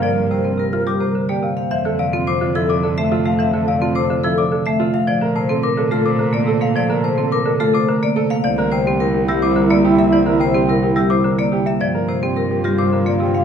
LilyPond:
<<
  \new Staff \with { instrumentName = "Celesta" } { \time 3/4 \key f \major \tempo 4 = 107 r4 r16 f'''16 d'''16 r8. f''16 r16 | r8 f''16 r16 d'''16 r16 e'''16 d'''16 r8. e''16 | r8 f''16 r16 d'''16 r16 e'''16 d'''16 r8. e''16 | r8 a''16 r16 d'''16 r16 f'''16 d'''16 r8. f''16 |
r8 a''16 r16 d'''16 r16 f'''16 d'''16 r8. f''16 | r8 g''16 r8. e'''16 d'''16 r8. e''16 | r8 g''16 r8. e'''16 d'''16 r8. e''16 | r4. f'''16 d'''16 r8. f''16 | }
  \new Staff \with { instrumentName = "Vibraphone" } { \time 3/4 \key f \major d''16 r16 c''16 r16 bes'16 r16 g'16 c''16 r16 d''16 r16 f''16 | e''16 r16 d''16 r16 c''16 r16 a'16 d''16 r16 e''16 r16 f''16 | e''16 r16 d''16 r16 c''16 r16 a'16 d''16 r16 e''16 r16 f''16 | d''16 r16 c''16 r16 bes'16 r16 a'16 c''16 r16 d''16 r16 f''16 |
d''16 r16 c''16 r16 bes'16 r16 a'16 c''16 r16 d''16 r16 f''16 | d''16 r16 c''16 r16 bes'16 r16 g'16 c''16 r16 d''16 r16 e''16 | d''16 r16 c''16 r16 bes'16 r16 g'16 c''16 r16 d''16 r16 e''16 | d''16 r16 c''16 r16 bes'16 r16 g'16 c''16 r16 d''16 r16 f''16 | }
  \new Staff \with { instrumentName = "Alto flute" } { \time 3/4 \key f \major bes'2~ bes'8. r16 | a'2.~ | a'2~ a'8. r16 | a'2.~ |
a'2~ a'8. r16 | e'2.~ | e'2~ e'8. r16 | f'2. | }
  \new Staff \with { instrumentName = "Grand piano" } { \time 3/4 \key f \major bes'16 r16 g'16 r16 g'16 f'16 r16 bes'16 r16 g'16 r16 c''16 | c''16 a'16 r16 f'16 r16 f'16 e'16 r16 a'16 r16 f'16 r16 | c''16 a'16 r16 f'16 r16 f'16 e'16 r16 a'16 r16 f'16 r16 | c''16 bes'16 r16 a'16 r16 a'16 f'16 r16 bes'16 r16 a'16 r16 |
c''16 bes'16 r16 a'16 r16 a'16 f'16 r16 bes'16 r16 a'16 r16 | c''16 bes'16 r16 g'16 r16 g'16 e'16 r16 bes'16 r16 g'16 r16 | c''16 bes'16 r16 g'16 r16 g'16 e'16 r16 bes'16 r16 g'16 r16 | c''16 bes'16 r16 g'16 r16 g'16 f'16 r16 bes'16 r16 g'16 r16 | }
  \new Staff \with { instrumentName = "Marimba" } { \clef bass \time 3/4 \key f \major f16 r16 c16 c'16 c16 r16 g16 c16 d16 bes16 c16 bes16 | e16 d16 c16 c'16 c16 d16 f16 c16 d16 a16 c16 a16 | e16 d16 c16 c'16 c16 d16 f16 c16 d16 a16 c16 a16 | f16 d16 c16 c'16 c16 d16 a16 c16 d16 bes16 c16 bes16 |
f16 d16 c16 c'16 c16 d16 a16 c16 d16 bes16 c16 bes16 | e16 d16 c16 c'16 c16 r16 g16 c16 d16 bes16 c16 bes16 | e16 d16 c16 c'16 c16 r16 g16 c16 d16 bes16 c16 bes16 | f16 r16 c16 c'16 c16 r16 g16 c16 d16 bes16 c16 bes16 | }
  \new Staff \with { instrumentName = "Cello" } { \clef bass \time 3/4 \key f \major g,2. | f,2.~ | f,2. | bes,2.~ |
bes,2. | c,2.~ | c,2. | g,2. | }
>>